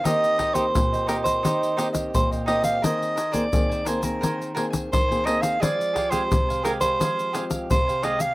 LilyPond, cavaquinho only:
\new Staff \with { instrumentName = "Cavaquinho" } { \time 4/4 \key ees \major \tempo 4 = 86 <ees' g' c'' ees''>8 <ees' g' c'' ees''>16 <ees' g' c'' ees''>16 r16 <g' c'' ees''>16 <ees' g' c'' ees''>16 <g' c'' ees''>16 <ees' g' c'' ees''>8 <ees' g' c'' ees''>16 <g' c'' ees''>8 <g' c'' ees''>16 <ees' g' c'' ees''>16 <g' c'' ees''>16 | <bes' c'' aes''>8 <bes' c'' aes''>16 <bes' c'' aes''>16 r16 <c'' aes''>16 <bes' c'' aes''>16 <c'' aes''>16 <bes' c'' aes''>8 <bes' c'' aes''>16 <c'' aes''>8 <c'' aes''>16 <bes' c'' aes''>16 <c'' aes''>16 | <aes' f'' aes''>8 <g' aes' f'' aes''>16 <g' aes' f'' aes''>16 r16 <g' f'' aes''>16 <g' aes' f'' aes''>16 <g' f'' aes''>16 <aes' f'' aes''>8 <g' aes' f'' aes''>16 <g' f''>8 <g' f'' aes''>16 <g' aes' f'' aes''>16 <g' f'' aes''>16 | }